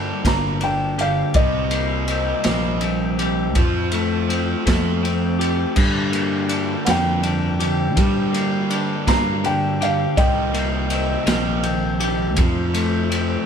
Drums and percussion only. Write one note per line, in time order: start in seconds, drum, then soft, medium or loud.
0.25 kick medium
0.25 snare loud
0.25 ride medium
0.61 ride medium
0.99 ride medium
1.34 kick loud
1.34 ride medium
1.71 ride medium
2.08 ride medium
2.44 snare loud
2.44 ride medium
2.81 ride medium
3.19 ride medium
3.55 kick loud
3.55 ride medium
3.92 ride medium
4.30 ride medium
4.67 kick medium
4.67 snare loud
4.67 ride medium
5.05 ride medium
5.41 ride medium
5.76 kick loud
5.76 crash loud
6.13 ride medium
6.49 ride medium
6.86 snare loud
6.86 ride loud
7.23 ride medium
7.60 ride medium
7.97 kick loud
7.97 ride loud
8.34 ride medium
8.70 ride medium
9.08 kick medium
9.08 snare loud
9.08 ride medium
9.44 ride medium
9.82 ride medium
10.17 kick loud
10.17 ride medium
10.54 ride medium
10.90 ride medium
11.27 snare loud
11.27 ride loud
11.63 ride medium
12.00 ride medium
12.36 kick loud
12.36 ride loud
12.74 ride medium
13.12 ride medium